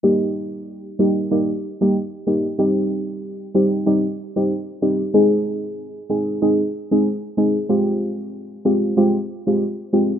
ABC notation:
X:1
M:4/4
L:1/16
Q:"Swing 16ths" 1/4=94
K:Eb
V:1 name="Synth stab"
[G,B,EG]6 [G,B,EG]2 [G,B,EG] z2 [G,B,EG] z2 [G,B,EG] z | [G,CEG]6 [G,CEG]2 [G,CEG] z2 [G,CEG] z2 [G,CEG] z | [A,CEA]6 [A,CEA]2 [A,CEA] z2 [A,CEA] z2 [A,CEA] z | [A,CFG]6 [A,CFG]2 [A,CFG] z2 [A,CFG] z2 [A,CFG] z |]